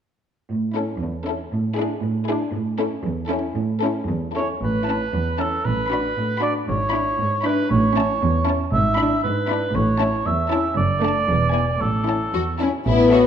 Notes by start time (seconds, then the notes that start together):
0.50 A2
0.75 C#4 E4 A4
1.01 E2
1.27 C#4 E4 A4
1.53 A2
1.78 D4 E4 G#4
2.03 A2
2.29 D4 E4 G#4
2.54 A2
2.79 C#4 E4 A4
3.05 E2
3.29 C#4 E4 A4
3.56 A2
3.81 C#4 E4 A4
4.08 E2
4.36 C#4 E4 A4 C#5
4.62 A1 A2 B4
4.86 C#4 E4 A5
5.14 E2
5.38 C#4 E4 A4 A5
5.65 A1 A2 B4
5.89 D4 F#4 B5
6.17 A2
6.42 D4 F#4 D5 B5
6.68 G#1 G#2 C#5
6.93 D4 E4 B5
7.20 G#2
7.44 D4 E4 B4 B5
7.70 A1 A2 C#5
7.96 C#4 E4 A5
8.23 E2
8.47 C#4 E4 A5
8.73 G#1 G#2 E5
8.97 D4 E4 B5
9.23 G#2 B4
9.49 D4 E4 B5
9.75 A1 A2 C#5
10.00 C#4 E4 A5
10.26 E2 E5
10.51 C#4 E4 A5
10.77 F#1 F#2 D5
11.03 A3 D4 A5
11.29 E1 E2
11.54 B3 E4 G#5
11.81 A1 A2 A4
12.07 C#4 E4 A5
12.34 E2 F#4
12.59 C#4 E4 A5
12.86 A1 B3 E4
13.12 F#4 A4 C#5 E5